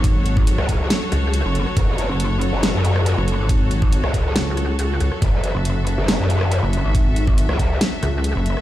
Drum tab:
HH |x-x-x-x-x-x-x-x-|x-x-x-x-x-x-x-x-|x-x-x-x-x-x-x-x-|x-x-x-x-x-x-x-x-|
SD |-----r--o-r----r|--------o--r----|-----r--o-r----r|--------o--r----|
BD |o--o--o---------|o---------------|o--o--o---------|o---------------|

HH |x-x-x-x-x-x-x-x-|
SD |-----r--o-r----r|
BD |o--o--o---------|